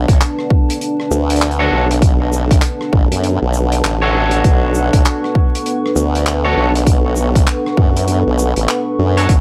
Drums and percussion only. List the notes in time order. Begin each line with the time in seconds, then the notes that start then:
0.08 kick, closed hi-hat
0.21 clap, closed hi-hat
0.39 cross-stick
0.50 kick
0.70 closed hi-hat
0.81 closed hi-hat
1.00 cross-stick
1.11 shaker
1.30 closed hi-hat
1.36 closed hi-hat
1.42 clap, closed hi-hat
1.51 closed hi-hat
1.91 cross-stick, closed hi-hat
2.02 kick, closed hi-hat
2.33 shaker
2.51 kick, closed hi-hat
2.62 clap, closed hi-hat
2.81 cross-stick
2.93 kick
3.12 closed hi-hat
3.24 closed hi-hat
3.53 shaker
3.72 closed hi-hat
3.84 clap, closed hi-hat
4.31 closed hi-hat
4.44 kick, closed hi-hat
4.75 shaker
4.93 kick, closed hi-hat
5.05 clap, closed hi-hat
5.24 cross-stick
5.35 kick
5.55 closed hi-hat
5.66 closed hi-hat
5.86 cross-stick
5.96 shaker
6.15 closed hi-hat
6.26 clap, closed hi-hat
6.75 cross-stick, closed hi-hat
6.79 cross-stick
6.81 cross-stick
6.84 kick, cross-stick, closed hi-hat
7.16 shaker
7.35 kick, closed hi-hat
7.47 clap, closed hi-hat
7.66 cross-stick
7.77 kick
7.97 closed hi-hat
8.08 closed hi-hat
8.39 shaker
8.56 closed hi-hat
8.68 clap, closed hi-hat
9.17 closed hi-hat
9.29 kick, closed hi-hat